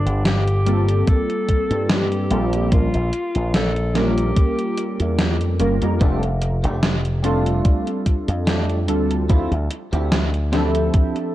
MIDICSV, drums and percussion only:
0, 0, Header, 1, 2, 480
1, 0, Start_track
1, 0, Key_signature, -1, "major"
1, 0, Tempo, 821918
1, 1588, Time_signature, 4, 2, 24, 8
1, 6627, End_track
2, 0, Start_track
2, 0, Title_t, "Drums"
2, 39, Note_on_c, 9, 42, 53
2, 97, Note_off_c, 9, 42, 0
2, 148, Note_on_c, 9, 38, 121
2, 148, Note_on_c, 9, 42, 79
2, 206, Note_off_c, 9, 38, 0
2, 206, Note_off_c, 9, 42, 0
2, 278, Note_on_c, 9, 42, 36
2, 336, Note_off_c, 9, 42, 0
2, 388, Note_on_c, 9, 42, 81
2, 447, Note_off_c, 9, 42, 0
2, 517, Note_on_c, 9, 42, 52
2, 576, Note_off_c, 9, 42, 0
2, 627, Note_on_c, 9, 42, 78
2, 628, Note_on_c, 9, 36, 116
2, 686, Note_off_c, 9, 42, 0
2, 687, Note_off_c, 9, 36, 0
2, 758, Note_on_c, 9, 42, 36
2, 816, Note_off_c, 9, 42, 0
2, 868, Note_on_c, 9, 36, 62
2, 868, Note_on_c, 9, 42, 75
2, 926, Note_off_c, 9, 42, 0
2, 927, Note_off_c, 9, 36, 0
2, 997, Note_on_c, 9, 42, 53
2, 1055, Note_off_c, 9, 42, 0
2, 1107, Note_on_c, 9, 38, 125
2, 1107, Note_on_c, 9, 42, 79
2, 1165, Note_off_c, 9, 38, 0
2, 1165, Note_off_c, 9, 42, 0
2, 1237, Note_on_c, 9, 42, 36
2, 1296, Note_off_c, 9, 42, 0
2, 1347, Note_on_c, 9, 42, 79
2, 1405, Note_off_c, 9, 42, 0
2, 1478, Note_on_c, 9, 42, 54
2, 1536, Note_off_c, 9, 42, 0
2, 1588, Note_on_c, 9, 42, 74
2, 1589, Note_on_c, 9, 36, 119
2, 1646, Note_off_c, 9, 42, 0
2, 1647, Note_off_c, 9, 36, 0
2, 1717, Note_on_c, 9, 42, 36
2, 1775, Note_off_c, 9, 42, 0
2, 1828, Note_on_c, 9, 42, 74
2, 1886, Note_off_c, 9, 42, 0
2, 1956, Note_on_c, 9, 42, 51
2, 2015, Note_off_c, 9, 42, 0
2, 2068, Note_on_c, 9, 38, 118
2, 2068, Note_on_c, 9, 42, 74
2, 2126, Note_off_c, 9, 38, 0
2, 2126, Note_off_c, 9, 42, 0
2, 2198, Note_on_c, 9, 42, 36
2, 2256, Note_off_c, 9, 42, 0
2, 2309, Note_on_c, 9, 38, 62
2, 2309, Note_on_c, 9, 42, 80
2, 2367, Note_off_c, 9, 38, 0
2, 2367, Note_off_c, 9, 42, 0
2, 2439, Note_on_c, 9, 42, 51
2, 2497, Note_off_c, 9, 42, 0
2, 2549, Note_on_c, 9, 36, 118
2, 2549, Note_on_c, 9, 42, 76
2, 2607, Note_off_c, 9, 42, 0
2, 2608, Note_off_c, 9, 36, 0
2, 2678, Note_on_c, 9, 42, 34
2, 2737, Note_off_c, 9, 42, 0
2, 2788, Note_on_c, 9, 42, 73
2, 2847, Note_off_c, 9, 42, 0
2, 2918, Note_on_c, 9, 42, 53
2, 2977, Note_off_c, 9, 42, 0
2, 3028, Note_on_c, 9, 38, 116
2, 3028, Note_on_c, 9, 42, 75
2, 3087, Note_off_c, 9, 38, 0
2, 3087, Note_off_c, 9, 42, 0
2, 3158, Note_on_c, 9, 42, 35
2, 3217, Note_off_c, 9, 42, 0
2, 3268, Note_on_c, 9, 42, 76
2, 3326, Note_off_c, 9, 42, 0
2, 3397, Note_on_c, 9, 42, 51
2, 3456, Note_off_c, 9, 42, 0
2, 3509, Note_on_c, 9, 36, 118
2, 3509, Note_on_c, 9, 42, 71
2, 3567, Note_off_c, 9, 42, 0
2, 3568, Note_off_c, 9, 36, 0
2, 3638, Note_on_c, 9, 42, 36
2, 3696, Note_off_c, 9, 42, 0
2, 3747, Note_on_c, 9, 42, 74
2, 3805, Note_off_c, 9, 42, 0
2, 3877, Note_on_c, 9, 42, 51
2, 3935, Note_off_c, 9, 42, 0
2, 3988, Note_on_c, 9, 38, 117
2, 3988, Note_on_c, 9, 42, 75
2, 4046, Note_off_c, 9, 38, 0
2, 4046, Note_off_c, 9, 42, 0
2, 4117, Note_on_c, 9, 42, 34
2, 4176, Note_off_c, 9, 42, 0
2, 4228, Note_on_c, 9, 42, 75
2, 4286, Note_off_c, 9, 42, 0
2, 4358, Note_on_c, 9, 42, 50
2, 4417, Note_off_c, 9, 42, 0
2, 4467, Note_on_c, 9, 42, 73
2, 4469, Note_on_c, 9, 36, 114
2, 4526, Note_off_c, 9, 42, 0
2, 4527, Note_off_c, 9, 36, 0
2, 4597, Note_on_c, 9, 42, 33
2, 4655, Note_off_c, 9, 42, 0
2, 4708, Note_on_c, 9, 36, 57
2, 4708, Note_on_c, 9, 42, 74
2, 4766, Note_off_c, 9, 42, 0
2, 4767, Note_off_c, 9, 36, 0
2, 4837, Note_on_c, 9, 42, 51
2, 4896, Note_off_c, 9, 42, 0
2, 4947, Note_on_c, 9, 38, 115
2, 4947, Note_on_c, 9, 42, 74
2, 5006, Note_off_c, 9, 38, 0
2, 5006, Note_off_c, 9, 42, 0
2, 5078, Note_on_c, 9, 42, 33
2, 5137, Note_off_c, 9, 42, 0
2, 5188, Note_on_c, 9, 42, 74
2, 5246, Note_off_c, 9, 42, 0
2, 5318, Note_on_c, 9, 42, 50
2, 5377, Note_off_c, 9, 42, 0
2, 5428, Note_on_c, 9, 36, 112
2, 5429, Note_on_c, 9, 42, 72
2, 5487, Note_off_c, 9, 36, 0
2, 5487, Note_off_c, 9, 42, 0
2, 5558, Note_on_c, 9, 42, 35
2, 5617, Note_off_c, 9, 42, 0
2, 5668, Note_on_c, 9, 42, 74
2, 5726, Note_off_c, 9, 42, 0
2, 5797, Note_on_c, 9, 42, 48
2, 5856, Note_off_c, 9, 42, 0
2, 5909, Note_on_c, 9, 38, 113
2, 5909, Note_on_c, 9, 42, 73
2, 5967, Note_off_c, 9, 38, 0
2, 5967, Note_off_c, 9, 42, 0
2, 6038, Note_on_c, 9, 42, 34
2, 6096, Note_off_c, 9, 42, 0
2, 6148, Note_on_c, 9, 38, 61
2, 6148, Note_on_c, 9, 42, 75
2, 6206, Note_off_c, 9, 38, 0
2, 6206, Note_off_c, 9, 42, 0
2, 6276, Note_on_c, 9, 42, 51
2, 6335, Note_off_c, 9, 42, 0
2, 6387, Note_on_c, 9, 42, 73
2, 6388, Note_on_c, 9, 36, 110
2, 6445, Note_off_c, 9, 42, 0
2, 6447, Note_off_c, 9, 36, 0
2, 6516, Note_on_c, 9, 42, 33
2, 6574, Note_off_c, 9, 42, 0
2, 6627, End_track
0, 0, End_of_file